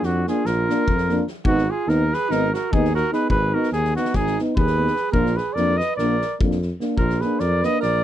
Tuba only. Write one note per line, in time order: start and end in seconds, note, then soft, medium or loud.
0.03 0.26 F2 medium
0.45 0.69 A#1 medium
0.89 1.20 F2 medium
1.45 1.68 G#1 medium
1.88 2.11 D#2 medium
2.30 2.53 G#1 medium
2.72 3.04 D#2 medium
3.30 3.53 G#1 medium
3.72 3.95 D#2 medium
4.14 4.37 G#1 medium
4.57 4.88 D#2 medium
5.13 5.37 A#1 medium
5.56 5.79 F2 medium
5.98 6.22 A#1 medium
6.41 6.72 F2 medium
6.97 7.21 A#1 medium
7.40 7.63 F2 medium
7.82 8.04 A#1 medium